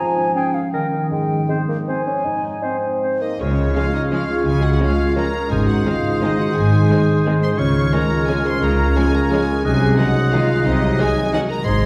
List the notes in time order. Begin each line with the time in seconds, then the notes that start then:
Already playing: G#3 G#4
0.00 F3 G#5
0.17 C#4
0.35 C#4 G#4 C#5 G5
0.54 G#4 F5
0.73 D#3 C#4 A#4 G5
0.92 D#4 C#5
1.10 G#2 G#3 G5
1.29 G#3
1.48 G#3 C4 D#4 C5
1.68 A#3 C5
1.88 C4 G#4 C5 G#5
2.07 C#4 C5
2.25 G#2 D#4
2.43 G#3
2.63 C4 D#4 C5
2.83 C5
3.03 C4 G#4 C5
3.22 A#3 D#4 C5 D#5
3.40 C#2 C#3 G#3 C#4 F4 C#5 F6
3.57 G#3
3.76 F3 G#3 C#4 F4 C#5 F5
3.93 D#4 F4 D#5
4.10 F3 G#3 C#4 F4 F5
4.29 G#3
4.45 C#2 C#3 G#4 G#5
4.61 C#4 F#4 F#5
4.73 F#5
4.78 F3 G#3 C#4 F4 C#5 F5
4.98 F4
5.16 F3 G#3 C#4 A#4 A#5
5.34 G#3
5.50 G#1 G#2 G#3 D#4 G#4 C5 G#5 D#6
5.66 G#3 F#4 F#5
5.85 D#3 G#3 C4 F4 C5 F5
6.03 D#4
6.21 D#3 G#3 C4 D#4 D#5
6.39 G#3 F#4 F#5
6.55 G#1 G#2 G#4 G#5
6.72 D#3
6.89 D#3 G#3 C4 C5
7.07 D#4
7.25 D#3 G#3 C4
7.42 G#3 C5 C6
7.58 C#2 C#3 G#3 F4 C#5 C#6 F6
7.76 G#3
7.93 F3 G#3 C#4 A#4 C#5 A#5
8.10 F4
8.27 F3 G#3 C#4 G#4 G#5
8.45 G#3 C5 C6
8.61 C#2 C#3 A#4 A#5
8.78 C#4
8.96 F3 G#3 C#4 G#4 C#5 G#5
9.14 F4 A#4 A#5
9.31 F3 G#3 C#4 G#4 G#5
9.49 G#3
9.64 C2 C3 F#3 G#3 D#4 G#4 D#5 G#5 F#6
9.81 G#3
9.97 D#3 F#3 G#3 D#4 F#4 D#5 F#5
10.15 F#4
10.32 D#3 F#3 G#3 D#4 F4 F5
10.49 G#3
10.64 C2 C3 D#4 D#5
10.80 F#3
10.98 D#3 F#3 G#3 D#4 G#4 D#5 G#5
11.16 F#4
11.33 D#3 F#3 G#3 D#4 F#4 F#5
11.49 G#3 A#4 A#5
11.65 G#1 G#2 G#3 D#4 C5 D#5 C6 G#6
11.82 G#3